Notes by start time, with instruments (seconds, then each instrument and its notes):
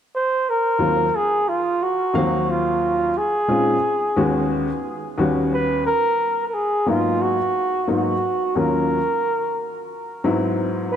0.15 flugelhorn C5
0.49 flugelhorn A#4
0.79 upright piano D#2 F#3 A#3 C4 F4
1.16 flugelhorn G#4
1.48 flugelhorn F4
1.82 flugelhorn F#4
2.14 upright piano D#2 F3 A#3 C4 F5
2.20 upright piano F#3
2.50 flugelhorn F4
3.17 flugelhorn G#4
3.48 upright piano A#2 G#3 C4 C#4 D#4 F4
4.16 upright piano D#2 G#3 B3 C#4 F#4
5.18 upright piano D#2 G3 B3 C#4 F#4
5.53 flugelhorn B4
5.87 flugelhorn A#4
6.48 flugelhorn A#4
6.54 flugelhorn G#4
6.86 upright piano G#2 F#3 A#3 B3 D#4, flugelhorn F4
7.22 flugelhorn F#4
7.87 upright piano G#2 F#3 A#3 B3 D#4, flugelhorn F#4
8.55 upright piano D#2 F#3 A#3 C#4 F4, flugelhorn A#4
10.24 upright piano G#2 F#3 B3 C4 E4
10.92 flugelhorn B4